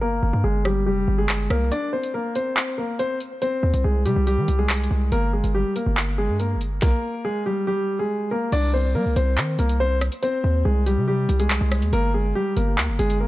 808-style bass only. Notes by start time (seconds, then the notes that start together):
Already playing: G1
0.23 G1
0.33 G2
0.44 G1
0.86 F1
1.08 G1
1.50 C2
3.63 D#2
3.74 C2
3.84 C2
4.06 C3
4.16 C2
4.38 D#3
4.48 C2
4.91 C2
5.12 G1
5.44 G1
5.86 G1
6.29 G2
6.56 G1
8.52 C2
8.95 G3
9.06 C2
9.16 C2
9.38 D#3
9.59 C2
10.44 D#2
10.65 C2
10.97 C3
11.29 C2
11.61 C2
11.82 D#2
11.93 G1
12.57 G1
12.78 D2
12.89 G1
12.99 G1